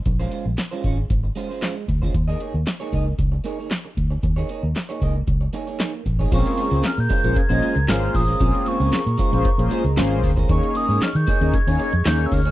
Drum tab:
CC |----------------|----------------|----------------|x---------------|
HH |x-x-x-x-x-x-x-x-|x-x-x-x-x-x-x-x-|x-x-xxx-x-xxx-x-|xxxxxxxxxxxxxxox|
CP |----x-------x---|----x-------x---|----x-------x---|----x-------x---|
SD |----o-------o---|----o-------o---|----o-------o---|----o-------o---|
BD |o-----o-o-----oo|o-----o-o-----o-|o-----o-o-----oo|o-----o-o-----o-|

CC |----------------|----------------|
HH |xxxxxxxxxxxxxxox|xxxxxxxxxxxxxxox|
CP |----x-------x---|----x-------x---|
SD |----o-------o---|----o-------o---|
BD |o-----o-o-----oo|o-----o-o-----o-|